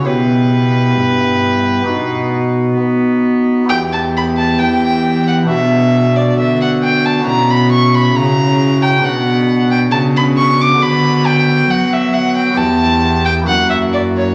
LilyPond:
<<
  \new Staff \with { instrumentName = "Violin" } { \time 4/4 \key b \phrygian \tempo 4 = 67 b'2. r4 | \key b \minor g''16 a''16 b''16 a''16 g''8. fis''16 e''8. d''16 e''16 fis''16 g''16 a''16 | ais''16 b''16 cis'''16 b''16 ais''8. g''16 fis''8. g''16 a''16 b''16 cis'''16 d'''16 | b''8 g''8 fis''16 e''16 fis''16 g''16 a''8. g''16 fis''16 e''16 d''16 cis''16 | }
  \new Staff \with { instrumentName = "Pipe organ" } { \time 4/4 \key b \phrygian <b e' g'>2 <b dis' fis'>2 | \key b \minor <b e' g'>2 <b d' fis'>2 | <cis' e' fis'>2 <b d' fis'>2 | <b fis'>2 <b e' g'>4 <ais e' fis'>4 | }
  \new Staff \with { instrumentName = "Pipe organ" } { \clef bass \time 4/4 \key b \phrygian b,4 g,4 b,4 b4 | \key b \minor e,4 e4 b,4 d4 | b,4 cis4 b,4 cis4 | d4 fis4 e,4 fis,4 | }
  \new Staff \with { instrumentName = "Cello" } { \clef bass \time 4/4 \key b \phrygian b,4 g,4 b,4 b4 | \key b \minor e,4 e4 b,4 d4 | b,4 cis4 b,4 cis4 | d4 fis4 e,4 fis,4 | }
>>